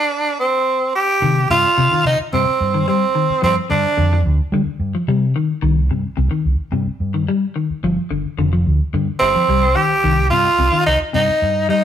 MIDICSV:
0, 0, Header, 1, 5, 480
1, 0, Start_track
1, 0, Key_signature, -3, "minor"
1, 0, Tempo, 550964
1, 1066, Time_signature, 4, 2, 24, 8
1, 10315, End_track
2, 0, Start_track
2, 0, Title_t, "Tenor saxophone"
2, 0, Program_c, 0, 66
2, 0, Note_on_c, 0, 62, 91
2, 342, Note_off_c, 0, 62, 0
2, 348, Note_on_c, 0, 60, 81
2, 793, Note_off_c, 0, 60, 0
2, 830, Note_on_c, 0, 67, 95
2, 1275, Note_off_c, 0, 67, 0
2, 1313, Note_on_c, 0, 65, 103
2, 1756, Note_off_c, 0, 65, 0
2, 1800, Note_on_c, 0, 63, 89
2, 1905, Note_off_c, 0, 63, 0
2, 2032, Note_on_c, 0, 60, 80
2, 2475, Note_off_c, 0, 60, 0
2, 2512, Note_on_c, 0, 60, 85
2, 2955, Note_off_c, 0, 60, 0
2, 2992, Note_on_c, 0, 60, 89
2, 3098, Note_off_c, 0, 60, 0
2, 3229, Note_on_c, 0, 62, 84
2, 3673, Note_off_c, 0, 62, 0
2, 8007, Note_on_c, 0, 60, 96
2, 8502, Note_on_c, 0, 67, 116
2, 8515, Note_off_c, 0, 60, 0
2, 8965, Note_off_c, 0, 67, 0
2, 8971, Note_on_c, 0, 65, 101
2, 9425, Note_off_c, 0, 65, 0
2, 9463, Note_on_c, 0, 63, 89
2, 9572, Note_off_c, 0, 63, 0
2, 9711, Note_on_c, 0, 63, 98
2, 10157, Note_off_c, 0, 63, 0
2, 10193, Note_on_c, 0, 63, 96
2, 10315, Note_off_c, 0, 63, 0
2, 10315, End_track
3, 0, Start_track
3, 0, Title_t, "Clean electric guitar"
3, 0, Program_c, 1, 27
3, 1065, Note_on_c, 1, 51, 91
3, 1209, Note_off_c, 1, 51, 0
3, 1312, Note_on_c, 1, 48, 76
3, 1454, Note_off_c, 1, 48, 0
3, 1546, Note_on_c, 1, 48, 86
3, 1619, Note_off_c, 1, 48, 0
3, 1670, Note_on_c, 1, 51, 70
3, 1813, Note_off_c, 1, 51, 0
3, 2033, Note_on_c, 1, 48, 91
3, 2174, Note_off_c, 1, 48, 0
3, 2390, Note_on_c, 1, 51, 79
3, 2460, Note_off_c, 1, 51, 0
3, 2508, Note_on_c, 1, 55, 86
3, 2650, Note_off_c, 1, 55, 0
3, 2745, Note_on_c, 1, 51, 77
3, 2888, Note_off_c, 1, 51, 0
3, 2980, Note_on_c, 1, 53, 90
3, 3125, Note_off_c, 1, 53, 0
3, 3220, Note_on_c, 1, 50, 72
3, 3364, Note_off_c, 1, 50, 0
3, 3462, Note_on_c, 1, 50, 79
3, 3535, Note_off_c, 1, 50, 0
3, 3597, Note_on_c, 1, 53, 80
3, 3736, Note_off_c, 1, 53, 0
3, 3952, Note_on_c, 1, 50, 90
3, 4093, Note_off_c, 1, 50, 0
3, 4310, Note_on_c, 1, 53, 75
3, 4379, Note_off_c, 1, 53, 0
3, 4430, Note_on_c, 1, 55, 90
3, 4571, Note_off_c, 1, 55, 0
3, 4667, Note_on_c, 1, 51, 81
3, 4809, Note_off_c, 1, 51, 0
3, 4899, Note_on_c, 1, 51, 97
3, 5043, Note_off_c, 1, 51, 0
3, 5146, Note_on_c, 1, 48, 68
3, 5288, Note_off_c, 1, 48, 0
3, 5375, Note_on_c, 1, 48, 92
3, 5450, Note_off_c, 1, 48, 0
3, 5496, Note_on_c, 1, 51, 76
3, 5642, Note_off_c, 1, 51, 0
3, 5855, Note_on_c, 1, 48, 81
3, 6000, Note_off_c, 1, 48, 0
3, 6222, Note_on_c, 1, 51, 77
3, 6293, Note_off_c, 1, 51, 0
3, 6347, Note_on_c, 1, 55, 90
3, 6489, Note_off_c, 1, 55, 0
3, 6584, Note_on_c, 1, 51, 72
3, 6727, Note_off_c, 1, 51, 0
3, 6830, Note_on_c, 1, 53, 98
3, 6971, Note_off_c, 1, 53, 0
3, 7061, Note_on_c, 1, 50, 83
3, 7205, Note_off_c, 1, 50, 0
3, 7306, Note_on_c, 1, 50, 90
3, 7377, Note_off_c, 1, 50, 0
3, 7430, Note_on_c, 1, 53, 78
3, 7572, Note_off_c, 1, 53, 0
3, 7789, Note_on_c, 1, 50, 87
3, 7931, Note_off_c, 1, 50, 0
3, 8149, Note_on_c, 1, 53, 69
3, 8219, Note_off_c, 1, 53, 0
3, 8270, Note_on_c, 1, 55, 80
3, 8412, Note_off_c, 1, 55, 0
3, 8504, Note_on_c, 1, 51, 67
3, 8647, Note_off_c, 1, 51, 0
3, 8747, Note_on_c, 1, 51, 101
3, 8890, Note_off_c, 1, 51, 0
3, 8988, Note_on_c, 1, 48, 75
3, 9131, Note_off_c, 1, 48, 0
3, 9227, Note_on_c, 1, 48, 82
3, 9299, Note_off_c, 1, 48, 0
3, 9337, Note_on_c, 1, 51, 72
3, 9484, Note_off_c, 1, 51, 0
3, 9699, Note_on_c, 1, 48, 84
3, 9845, Note_off_c, 1, 48, 0
3, 10183, Note_on_c, 1, 55, 86
3, 10315, Note_off_c, 1, 55, 0
3, 10315, End_track
4, 0, Start_track
4, 0, Title_t, "Fingered electric bass"
4, 0, Program_c, 2, 33
4, 1063, Note_on_c, 2, 48, 109
4, 1281, Note_off_c, 2, 48, 0
4, 1305, Note_on_c, 2, 43, 80
4, 1416, Note_off_c, 2, 43, 0
4, 1549, Note_on_c, 2, 48, 93
4, 1658, Note_off_c, 2, 48, 0
4, 1787, Note_on_c, 2, 48, 76
4, 1896, Note_off_c, 2, 48, 0
4, 2031, Note_on_c, 2, 43, 118
4, 2138, Note_off_c, 2, 43, 0
4, 2269, Note_on_c, 2, 43, 96
4, 2484, Note_off_c, 2, 43, 0
4, 2987, Note_on_c, 2, 43, 103
4, 3096, Note_off_c, 2, 43, 0
4, 3228, Note_on_c, 2, 43, 86
4, 3336, Note_off_c, 2, 43, 0
4, 3461, Note_on_c, 2, 41, 118
4, 3679, Note_off_c, 2, 41, 0
4, 3708, Note_on_c, 2, 38, 93
4, 3816, Note_off_c, 2, 38, 0
4, 3938, Note_on_c, 2, 55, 114
4, 4050, Note_off_c, 2, 55, 0
4, 4177, Note_on_c, 2, 43, 97
4, 4289, Note_off_c, 2, 43, 0
4, 4424, Note_on_c, 2, 48, 90
4, 4640, Note_off_c, 2, 48, 0
4, 4898, Note_on_c, 2, 36, 116
4, 5117, Note_off_c, 2, 36, 0
4, 5137, Note_on_c, 2, 43, 80
4, 5249, Note_off_c, 2, 43, 0
4, 5378, Note_on_c, 2, 36, 97
4, 5490, Note_off_c, 2, 36, 0
4, 5620, Note_on_c, 2, 36, 82
4, 5731, Note_off_c, 2, 36, 0
4, 5852, Note_on_c, 2, 43, 117
4, 5967, Note_off_c, 2, 43, 0
4, 6099, Note_on_c, 2, 43, 88
4, 6318, Note_off_c, 2, 43, 0
4, 6822, Note_on_c, 2, 31, 113
4, 6932, Note_off_c, 2, 31, 0
4, 7058, Note_on_c, 2, 31, 79
4, 7170, Note_off_c, 2, 31, 0
4, 7299, Note_on_c, 2, 29, 104
4, 7518, Note_off_c, 2, 29, 0
4, 7543, Note_on_c, 2, 38, 90
4, 7653, Note_off_c, 2, 38, 0
4, 7783, Note_on_c, 2, 43, 107
4, 7893, Note_off_c, 2, 43, 0
4, 8024, Note_on_c, 2, 31, 95
4, 8134, Note_off_c, 2, 31, 0
4, 8260, Note_on_c, 2, 36, 90
4, 8479, Note_off_c, 2, 36, 0
4, 8744, Note_on_c, 2, 36, 113
4, 8961, Note_off_c, 2, 36, 0
4, 8981, Note_on_c, 2, 43, 86
4, 9093, Note_off_c, 2, 43, 0
4, 9219, Note_on_c, 2, 36, 92
4, 9332, Note_off_c, 2, 36, 0
4, 9467, Note_on_c, 2, 36, 79
4, 9577, Note_off_c, 2, 36, 0
4, 9707, Note_on_c, 2, 43, 115
4, 9817, Note_off_c, 2, 43, 0
4, 9949, Note_on_c, 2, 43, 93
4, 10166, Note_off_c, 2, 43, 0
4, 10315, End_track
5, 0, Start_track
5, 0, Title_t, "Muted fingered electric bass strokes"
5, 1675, Note_on_c, 9, 29, 39
5, 1762, Note_off_c, 9, 29, 0
5, 1914, Note_on_c, 9, 29, 38
5, 2001, Note_off_c, 9, 29, 0
5, 2158, Note_on_c, 9, 29, 39
5, 2245, Note_off_c, 9, 29, 0
5, 2874, Note_on_c, 9, 29, 37
5, 2961, Note_off_c, 9, 29, 0
5, 3823, Note_on_c, 9, 29, 41
5, 3911, Note_off_c, 9, 29, 0
5, 4057, Note_on_c, 9, 29, 38
5, 4144, Note_off_c, 9, 29, 0
5, 5506, Note_on_c, 9, 29, 40
5, 5593, Note_off_c, 9, 29, 0
5, 5745, Note_on_c, 9, 29, 36
5, 5832, Note_off_c, 9, 29, 0
5, 5978, Note_on_c, 9, 29, 45
5, 6065, Note_off_c, 9, 29, 0
5, 6705, Note_on_c, 9, 29, 38
5, 6792, Note_off_c, 9, 29, 0
5, 7666, Note_on_c, 9, 29, 34
5, 7753, Note_off_c, 9, 29, 0
5, 7905, Note_on_c, 9, 29, 36
5, 7992, Note_off_c, 9, 29, 0
5, 9348, Note_on_c, 9, 29, 42
5, 9435, Note_off_c, 9, 29, 0
5, 9589, Note_on_c, 9, 29, 39
5, 9676, Note_off_c, 9, 29, 0
5, 9831, Note_on_c, 9, 29, 41
5, 9918, Note_off_c, 9, 29, 0
5, 10315, End_track
0, 0, End_of_file